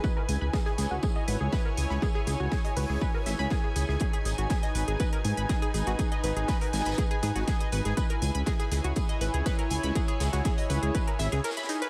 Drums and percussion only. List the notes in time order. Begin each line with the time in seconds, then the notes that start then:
0.04 kick, tambourine
0.29 open hi-hat, tambourine
0.53 kick, snare, tambourine
0.65 snare
0.78 snare, open hi-hat, tambourine
1.03 kick, tambourine
1.28 open hi-hat, tambourine
1.52 kick, snare, tambourine
1.77 open hi-hat, tambourine
1.90 snare
2.02 kick, tambourine
2.27 open hi-hat, tambourine
2.52 kick, snare, tambourine
2.65 closed hi-hat, open hi-hat
2.77 open hi-hat
3.01 kick, tambourine
3.26 snare, open hi-hat, tambourine
3.39 snare
3.50 kick, snare, tambourine
3.76 open hi-hat, tambourine
3.89 snare
4.00 kick, closed hi-hat, tambourine
4.13 closed hi-hat
4.25 open hi-hat, tambourine
4.38 closed hi-hat
4.50 kick, snare, closed hi-hat, tambourine
4.63 snare, closed hi-hat
4.75 open hi-hat, tambourine
4.88 closed hi-hat
5.00 kick, closed hi-hat, tambourine
5.13 closed hi-hat
5.25 open hi-hat, tambourine
5.37 closed hi-hat
5.49 kick, snare, closed hi-hat, tambourine
5.62 closed hi-hat
5.74 open hi-hat, tambourine
5.86 snare, closed hi-hat
5.99 kick, closed hi-hat, tambourine
6.12 closed hi-hat
6.23 open hi-hat, tambourine
6.37 closed hi-hat
6.48 kick, snare, closed hi-hat, tambourine
6.61 closed hi-hat, open hi-hat
6.73 snare, open hi-hat, tambourine
6.79 snare, tambourine
6.85 snare, closed hi-hat, tambourine
6.92 snare, tambourine
6.98 kick, closed hi-hat, tambourine
7.11 closed hi-hat
7.23 snare, open hi-hat, tambourine
7.36 snare, closed hi-hat
7.48 kick, snare, closed hi-hat, tambourine
7.60 closed hi-hat
7.72 open hi-hat, tambourine
7.85 snare, closed hi-hat
7.97 kick, closed hi-hat, tambourine
8.10 closed hi-hat
8.22 open hi-hat, tambourine
8.35 closed hi-hat
8.46 kick, snare, closed hi-hat, tambourine
8.59 snare, closed hi-hat
8.72 snare, open hi-hat, tambourine
8.84 closed hi-hat
8.96 kick, closed hi-hat, tambourine
9.09 closed hi-hat
9.21 open hi-hat, tambourine
9.34 closed hi-hat
9.46 kick, snare, closed hi-hat, tambourine
9.59 closed hi-hat
9.70 open hi-hat, tambourine
9.83 snare, closed hi-hat
9.95 kick, closed hi-hat, tambourine
10.08 closed hi-hat
10.20 snare, open hi-hat, tambourine
10.33 snare, closed hi-hat
10.45 kick, snare, closed hi-hat, tambourine
10.58 open hi-hat
10.70 open hi-hat, tambourine
10.83 closed hi-hat
10.95 kick, closed hi-hat, tambourine
11.08 closed hi-hat
11.19 snare, open hi-hat, tambourine
11.32 snare, closed hi-hat
11.44 snare, closed hi-hat, tambourine
11.51 snare, tambourine
11.57 snare, closed hi-hat, tambourine
11.63 snare, tambourine
11.69 open hi-hat, tambourine
11.82 snare, closed hi-hat